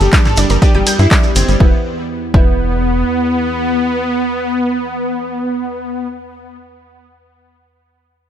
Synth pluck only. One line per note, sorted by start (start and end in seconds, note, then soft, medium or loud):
0.13 0.21 D4 medium
0.13 0.21 D5 medium
0.38 0.46 D4 loud
0.38 0.46 D5 medium
0.50 0.53 A#4 medium
0.50 0.53 A#5 medium
0.62 0.68 D4 loud
0.62 0.68 D5 medium
0.75 0.80 G4 medium
0.75 0.80 G5 medium
0.87 0.90 G5 loud
0.87 0.90 G6 medium
1.11 1.17 D4 medium
1.11 1.17 D5 medium
1.60 1.74 E4 loud
2.34 2.48 E4 medium